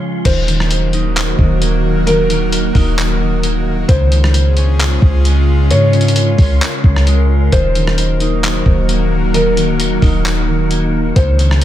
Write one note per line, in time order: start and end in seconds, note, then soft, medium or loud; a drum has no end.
0.00 0.21 C#3 medium
0.00 0.22 F3 medium
0.00 0.22 G#3 medium
0.00 0.22 C#4 medium
0.00 0.22 F4 medium
0.00 0.21 C#5 loud
0.00 0.22 F5 medium
0.00 0.22 C6 medium
0.25 1.35 D#1 loud
0.25 3.85 D#3 medium
0.25 0.47 D#3 loud
0.25 3.85 F#3 medium
0.25 3.85 A#3 medium
0.25 3.85 D#4 medium
0.25 3.85 F#4 medium
0.25 3.85 A#4 medium
0.25 1.58 C5 loud
0.25 3.85 F#5 medium
0.25 kick loud
0.25 closed hi-hat medium
0.25 crash loud
0.48 1.38 D#3 medium
0.48 closed hi-hat medium
0.60 cross-stick medium
0.71 closed hi-hat medium
0.93 2.75 D#4 medium
0.93 closed hi-hat medium
1.16 clap loud
1.16 closed hi-hat medium
1.39 2.71 D#1 loud
1.39 2.06 D#3 medium
1.39 kick medium
1.62 3.43 A#3 medium
1.62 closed hi-hat medium
2.07 2.29 D#3 loud
2.07 3.39 A#4 loud
2.07 closed hi-hat medium
2.30 3.19 D#3 medium
2.30 closed hi-hat medium
2.52 closed hi-hat medium
2.75 3.85 D#1 loud
2.75 5.45 D#4 medium
2.75 kick medium
2.75 open hi-hat soft
2.98 clap loud
2.98 closed hi-hat medium
3.21 3.94 D#3 medium
3.43 6.65 A#3 medium
3.43 closed hi-hat medium
3.88 4.98 C#2 loud
3.88 7.49 C#3 medium
3.88 4.11 C#3 loud
3.88 7.49 G#3 medium
3.88 7.49 C#4 medium
3.88 7.49 F4 medium
3.88 5.69 G#4 medium
3.88 5.21 C5 loud
3.88 7.49 F5 medium
3.88 7.49 C6 medium
3.88 kick loud
3.88 closed hi-hat medium
4.12 5.02 C#3 medium
4.12 closed hi-hat medium
4.24 cross-stick loud
4.34 closed hi-hat medium
4.57 6.39 C#4 medium
4.57 closed hi-hat medium
4.80 clap loud
4.80 closed hi-hat medium
5.02 5.72 C#2 loud
5.02 5.70 C#3 medium
5.02 kick medium
5.25 7.06 G#3 medium
5.25 closed hi-hat medium
5.70 6.35 G#2 loud
5.70 5.92 C#3 medium
5.70 11.12 A#4 medium
5.70 7.49 C#5 loud
5.70 closed hi-hat medium
5.93 6.84 C#3 medium
5.93 closed hi-hat soft
6.01 closed hi-hat medium
6.08 closed hi-hat medium
6.16 closed hi-hat medium
6.38 6.61 C#2 loud
6.38 9.29 C#4 medium
6.38 kick loud
6.38 open hi-hat soft
6.62 clap loud
6.62 closed hi-hat medium
6.84 7.50 C#2 loud
6.84 7.57 C#3 medium
6.84 kick medium
6.96 cross-stick medium
7.07 7.57 G#3 medium
7.07 closed hi-hat medium
7.52 8.62 D#1 loud
7.52 11.12 D#3 medium
7.52 7.74 D#3 loud
7.52 11.12 F#3 medium
7.52 11.12 A#3 medium
7.52 11.13 D#4 medium
7.52 11.12 F#4 medium
7.52 11.13 A#4 medium
7.52 8.85 C5 loud
7.52 11.13 F#5 medium
7.52 kick loud
7.52 closed hi-hat medium
7.75 8.65 D#3 medium
7.75 closed hi-hat medium
7.87 cross-stick medium
7.98 closed hi-hat medium
8.20 10.02 D#4 medium
8.20 closed hi-hat medium
8.44 clap loud
8.44 closed hi-hat medium
8.66 9.98 D#1 loud
8.66 9.34 D#3 medium
8.66 kick loud
8.89 10.71 A#3 medium
8.89 closed hi-hat medium
9.34 9.56 D#3 loud
9.34 10.67 A#4 loud
9.34 closed hi-hat medium
9.57 10.47 D#3 medium
9.57 closed hi-hat medium
9.80 closed hi-hat medium
10.02 11.12 D#1 loud
10.02 11.64 D#4 medium
10.02 kick medium
10.02 open hi-hat soft
10.25 clap loud
10.25 closed hi-hat medium
10.48 11.21 D#3 medium
10.71 11.64 A#3 medium
10.71 closed hi-hat medium
11.16 11.64 C#2 loud
11.16 11.64 C#3 medium
11.16 11.38 C#3 loud
11.16 11.64 G#3 medium
11.16 11.64 C#4 medium
11.16 11.64 F4 medium
11.16 11.64 G#4 medium
11.16 11.64 C5 loud
11.16 11.64 F5 medium
11.16 11.64 C6 medium
11.16 kick loud
11.16 closed hi-hat medium
11.39 11.64 C#3 medium
11.39 closed hi-hat medium
11.51 cross-stick medium